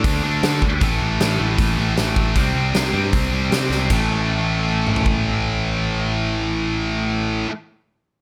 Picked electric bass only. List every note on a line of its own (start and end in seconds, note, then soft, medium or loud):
0.04 0.22 D2 medium
0.24 0.41 D2 medium
0.43 0.60 D3 medium
0.62 0.80 D2 medium
0.81 0.99 A1 medium
1.01 1.18 A1 medium
1.20 1.38 A1 loud
1.40 1.57 A1 medium
1.59 1.76 A1 medium
1.78 1.95 A1 medium
1.98 2.15 A1 medium
2.16 2.34 A1 medium
2.36 2.53 C2 medium
2.55 2.72 C2 medium
2.74 2.92 C2 medium
2.94 3.11 G2 medium
3.13 3.30 C2 medium
3.31 3.49 C2 medium
3.51 3.69 C3 medium
3.70 3.88 C2 medium
3.90 7.44 A1 medium